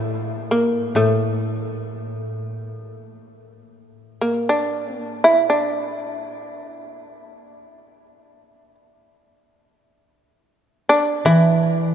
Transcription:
0.00 0.94 A2 soft
0.00 0.48 A3 medium
0.51 0.92 A#3 soft
0.95 4.03 A2 soft
0.95 3.01 A3 soft
4.21 4.50 A#3 soft
4.49 5.00 D4 medium
5.00 5.24 A#3 medium
5.24 5.49 E4 medium
5.50 8.75 D4 soft
10.89 11.24 D4 medium
11.25 11.95 E3 soft
11.25 11.95 E4 medium

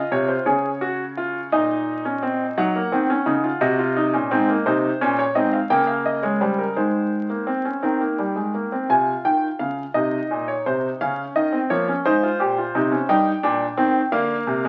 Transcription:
0.00 0.44 F4 loud
0.00 0.11 D#5 medium
0.12 0.33 C3 medium
0.12 0.29 C#5 medium
0.28 0.46 C5 medium
0.46 1.49 C#3 medium
0.46 0.68 G#4 medium
0.46 1.49 C#5 medium
0.81 1.03 F#4 medium
1.17 1.39 F4 medium
1.52 2.54 A#2 medium
1.52 2.03 D#4 medium
1.52 2.55 D#5 medium
2.05 2.22 C#4 medium
2.23 2.44 C4 medium
2.57 2.79 F#3 medium
2.57 2.75 D#4 medium
2.57 3.59 F#5 medium
2.76 2.92 A#3 medium
2.92 3.14 D#3 medium
2.92 3.09 C4 medium
3.10 3.27 C#4 medium
3.26 3.48 C#3 medium
3.26 3.44 D#4 medium
3.44 3.61 F4 medium
3.61 4.12 C3 medium
3.61 3.79 F#4 medium
3.61 4.63 D#5 medium
3.79 3.96 F4 medium
3.97 4.14 D#4 medium
4.13 4.31 A#2 medium
4.13 4.31 C#4 medium
4.31 4.53 G#2 medium
4.31 4.49 C4 medium
4.49 4.66 A#3 medium
4.66 4.88 C3 medium
4.66 4.88 D#4 medium
4.66 5.17 C5 medium
5.01 5.23 A#2 medium
5.01 5.23 C#4 medium
5.19 5.36 C#5 medium
5.35 5.57 G#2 medium
5.35 5.57 C4 medium
5.35 5.53 D#5 medium
5.53 5.71 F5 medium
5.70 6.73 C#3 medium
5.70 6.22 A#3 medium
5.70 5.88 G5 medium
5.87 6.05 F5 medium
6.06 6.23 D#5 medium
6.23 6.41 G#3 medium
6.23 6.41 C#5 medium
6.41 6.63 G3 medium
6.41 6.58 C5 medium
6.59 6.76 A#4 medium
6.76 7.80 D#3 medium
6.76 7.28 G#3 medium
6.76 7.80 C5 medium
7.30 7.47 A#3 medium
7.47 7.65 C4 medium
7.65 7.82 C#4 medium
7.82 8.86 D#3 medium
7.82 8.00 C4 medium
7.82 8.86 A#4 medium
8.00 8.18 A#3 medium
8.19 8.36 G3 medium
8.36 8.53 G#3 soft
8.55 8.72 A#3 medium
8.72 8.89 C4 medium
8.89 9.11 C3 medium
8.89 9.92 F4 medium
8.89 9.12 G#5 medium
9.25 9.47 D#3 medium
9.25 9.47 G5 medium
9.59 9.82 C#3 medium
9.59 9.81 F5 medium
9.94 10.17 C3 medium
9.94 10.97 D#4 medium
9.94 10.46 D#5 medium
10.31 10.52 A#2 medium
10.48 10.65 C#5 medium
10.66 10.88 C3 medium
10.66 10.88 C5 medium
11.01 11.23 C#3 medium
11.01 11.51 C#4 medium
11.01 11.22 F5 medium
11.36 11.57 D#3 medium
11.36 11.57 D#5 medium
11.53 11.69 C4 medium
11.70 11.92 F3 medium
11.70 11.87 A#3 medium
11.70 11.91 C#5 medium
11.88 12.04 C#4 medium
12.06 12.27 G#2 medium
12.06 12.22 D#4 medium
12.06 13.06 C5 medium
12.23 12.39 F4 medium
12.40 12.61 A#2 medium
12.40 12.56 G4 medium
12.58 12.74 F4 medium
12.75 12.96 C3 medium
12.75 12.91 D#4 medium
12.92 13.08 C#4 medium
13.09 13.30 G2 medium
13.09 13.30 D#4 medium
13.09 14.10 G5 medium
13.43 13.65 A#2 medium
13.43 13.65 D4 medium
13.77 13.99 D#3 medium
13.77 13.99 C4 medium
14.12 14.34 D3 medium
14.12 14.63 A#3 medium
14.12 14.68 F5 medium
14.47 14.68 C3 medium
14.65 14.68 G#3 medium

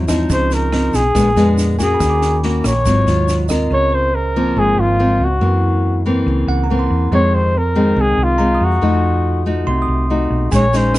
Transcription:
0.00 0.26 E2 medium
0.00 0.28 G#2 medium
0.08 0.69 F3 medium
0.08 0.69 C4 medium
0.08 0.69 D#4 medium
0.08 kick soft
0.08 cross-stick medium
0.08 snare soft
0.08 shaker medium
0.29 0.90 C#2 loud
0.29 1.13 C#3 medium
0.29 0.55 C5 medium
0.29 kick medium
0.29 snare soft
0.29 shaker medium
0.51 0.97 A#4 medium
0.51 snare soft
0.51 shaker soft
0.72 1.01 F3 medium
0.72 1.01 C4 medium
0.72 1.01 D#4 medium
0.72 cross-stick medium
0.72 snare soft
0.94 1.14 B1 medium
0.94 1.58 G#4 medium
0.94 kick soft
0.94 snare soft
0.94 shaker medium
1.15 1.35 A#1 medium
1.15 1.98 A#2 soft
1.15 1.28 G#3 medium
1.15 1.28 B3 medium
1.15 1.28 D4 medium
1.15 kick medium
1.15 cross-stick medium
1.15 snare soft
1.15 shaker medium
1.36 1.96 F2 medium
1.36 1.76 G#3 medium
1.36 1.76 B3 medium
1.36 1.76 D4 medium
1.36 snare soft
1.36 shaker soft
1.58 snare soft
1.58 shaker medium
1.79 2.40 A#3 soft
1.79 2.40 C#4 medium
1.79 2.40 F#4 medium
1.79 2.41 G#4 medium
1.79 2.19 G#5 soft
1.79 kick soft
1.79 snare soft
1.79 shaker medium
1.94 2.32 B5 soft
2.00 2.60 D#2 medium
2.00 2.84 D#3 medium
2.00 kick medium
2.00 cross-stick medium
2.00 snare soft
2.00 shaker medium
2.10 2.45 D6 soft
2.22 snare soft
2.22 shaker soft
2.43 2.72 A#3 medium
2.43 2.72 C#4 soft
2.43 2.72 F#4 medium
2.43 snare soft
2.64 2.84 A#1 medium
2.64 3.47 C#5 medium
2.64 kick soft
2.64 cross-stick medium
2.64 snare soft
2.64 shaker medium
2.86 3.05 G#1 medium
2.86 3.69 G#2 soft
2.86 3.04 F#3 soft
2.86 3.04 C4 medium
2.86 3.04 F4 medium
2.86 kick medium
2.86 snare soft
2.86 shaker medium
3.07 3.67 D#2 medium
3.07 3.47 F#3 medium
3.07 3.47 F4 medium
3.07 snare soft
3.07 shaker soft
3.28 snare soft
3.28 shaker medium
3.49 4.10 C4 medium
3.49 4.11 F4 medium
3.49 4.11 A#4 medium
3.49 3.89 D#5 soft
3.49 kick soft
3.49 cross-stick medium
3.49 snare soft
3.49 shaker medium
3.70 4.52 C#2 medium
3.70 4.55 C#3 medium
3.70 3.96 C#5 loud
3.92 4.47 C5 soft
3.92 4.16 C5 loud
4.15 4.60 A#4 medium
4.36 4.96 F3 medium
4.36 4.96 A#3 medium
4.36 4.96 C4 medium
4.56 4.76 G#1 medium
4.56 5.39 G#2 soft
4.56 4.82 G#4 medium
4.77 5.17 G#1 medium
4.77 5.25 F4 medium
4.99 5.27 F3 soft
4.99 5.27 A#3 soft
4.99 5.27 C4 medium
5.20 5.40 C#2 medium
5.24 6.07 F#4 medium
5.41 6.24 F#2 medium
5.41 6.23 F#2 medium
5.41 6.02 E3 medium
5.41 6.02 A#3 medium
5.41 6.02 C4 medium
6.06 6.66 E3 medium
6.06 6.66 A#3 medium
6.06 6.66 C4 medium
6.26 6.46 C#2 medium
6.26 7.10 C#3 medium
6.47 6.87 C#2 medium
6.47 7.03 F#5 medium
6.64 7.16 A#5 soft
6.70 7.09 E3 soft
6.70 7.09 A#3 soft
6.70 7.09 C4 medium
6.79 7.29 C6 soft
6.90 7.10 E2 medium
7.11 7.93 F2 medium
7.11 7.95 F2 medium
7.11 7.54 D#3 medium
7.11 7.55 G#3 medium
7.11 7.55 C4 medium
7.11 7.36 C#5 loud
7.34 7.59 C5 medium
7.58 8.03 A#4 loud
7.75 8.36 D#3 medium
7.75 8.36 G#3 medium
7.75 8.36 C4 medium
7.96 8.16 C2 medium
7.96 8.80 C3 soft
8.01 8.25 G#4 medium
8.17 8.57 C2 medium
8.23 8.66 F4 medium
8.38 8.78 D#3 medium
8.38 8.79 G#3 medium
8.38 8.79 C4 medium
8.38 8.93 A#5 medium
8.55 9.07 D#6 soft
8.61 8.81 F2 medium
8.61 9.48 F#4 medium
8.81 9.63 F2 medium
8.81 9.65 F3 medium
8.81 9.42 A3 medium
8.81 9.43 D#4 medium
8.81 9.43 F#4 medium
9.46 10.06 A3 medium
9.46 10.07 D#4 medium
9.46 10.07 F#4 medium
9.67 9.87 C2 medium
9.67 10.50 C3 medium
9.67 10.21 C6 medium
9.82 10.34 D#6 soft
9.88 10.28 C2 medium
10.10 10.49 A3 soft
10.10 10.49 D#4 medium
10.10 10.49 F#4 soft
10.30 10.51 B1 medium
10.51 10.99 A#1 medium
10.51 10.99 A#2 medium
10.51 10.64 G#3 soft
10.51 10.64 C#4 medium
10.51 10.65 D#4 medium
10.51 10.78 C#5 loud
10.51 10.99 G#5 soft
10.51 kick medium
10.51 snare soft
10.51 shaker medium
10.73 10.99 G#3 medium
10.73 10.99 C#4 medium
10.73 10.99 D#4 medium
10.73 10.99 C5 loud
10.73 snare soft
10.73 shaker soft
10.94 cross-stick medium
10.94 snare soft
10.94 shaker medium

